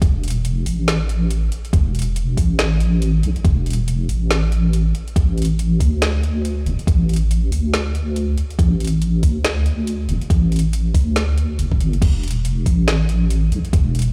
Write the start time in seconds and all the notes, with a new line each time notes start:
0.02 E1, kick, closed hi-hat
0.23 closed hi-hat
0.28 closed hi-hat
0.30 closed hi-hat
0.45 closed hi-hat
0.66 A1, open hi-hat
0.88 snare, closed hi-hat
1.09 closed hi-hat
1.31 closed hi-hat
1.52 closed hi-hat
1.65 closed hi-hat
1.73 E1, kick, closed hi-hat
1.95 closed hi-hat
1.99 closed hi-hat
2.02 closed hi-hat
2.16 closed hi-hat
2.37 A1, kick, open hi-hat
2.59 snare, closed hi-hat
2.80 closed hi-hat
3.02 closed hi-hat
3.23 B1, closed hi-hat
3.36 closed hi-hat
3.45 E1, kick, closed hi-hat
3.66 closed hi-hat
3.70 closed hi-hat
3.73 closed hi-hat
3.88 closed hi-hat
4.08 A1, open hi-hat
4.31 snare, closed hi-hat
4.52 closed hi-hat
4.73 closed hi-hat
4.95 closed hi-hat
5.08 closed hi-hat
5.16 A1, kick, closed hi-hat
5.38 closed hi-hat
5.42 closed hi-hat
5.45 closed hi-hat
5.59 closed hi-hat
5.80 D2, kick, open hi-hat
6.02 snare, closed hi-hat
6.23 closed hi-hat
6.45 closed hi-hat
6.66 E1, closed hi-hat
6.79 closed hi-hat
6.87 A1, kick, closed hi-hat
7.09 closed hi-hat
7.14 closed hi-hat
7.16 closed hi-hat
7.31 closed hi-hat
7.51 D2, open hi-hat
7.74 snare, closed hi-hat
7.95 closed hi-hat
8.16 closed hi-hat
8.38 closed hi-hat
8.50 closed hi-hat
8.59 A1, kick, closed hi-hat
8.80 closed hi-hat
8.85 closed hi-hat
8.87 closed hi-hat
9.02 closed hi-hat
9.23 D2, kick, open hi-hat
9.45 snare, closed hi-hat
9.66 closed hi-hat
9.87 closed hi-hat
10.08 E1, closed hi-hat
10.21 closed hi-hat
10.30 A1, kick, closed hi-hat
10.52 closed hi-hat
10.56 closed hi-hat
10.59 closed hi-hat
10.73 closed hi-hat
10.94 D2, kick, open hi-hat
11.16 snare, closed hi-hat
11.38 closed hi-hat
11.59 E1, closed hi-hat
11.72 kick
11.80 G1, closed hi-hat
11.93 closed hi-hat
12.02 E1, kick, closed hi-hat, crash
12.23 closed hi-hat
12.28 closed hi-hat
12.31 closed hi-hat
12.45 closed hi-hat
12.66 A1, kick, open hi-hat
12.88 snare, closed hi-hat
13.09 closed hi-hat
13.30 closed hi-hat
13.52 B1, closed hi-hat
13.65 closed hi-hat
13.73 E1, kick, closed hi-hat
13.95 closed hi-hat
13.99 closed hi-hat
14.02 closed hi-hat